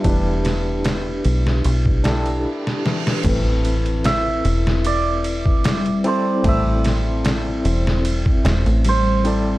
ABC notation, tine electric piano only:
X:1
M:4/4
L:1/8
Q:1/4=75
K:Am
V:1 name="Tine electric piano"
[DEGB]4- [DEGB] [DEGA] z2 | [CEAB]6- [CEAB] [CEAd] | [CEAc]6- [CEAc] [CEAd] |]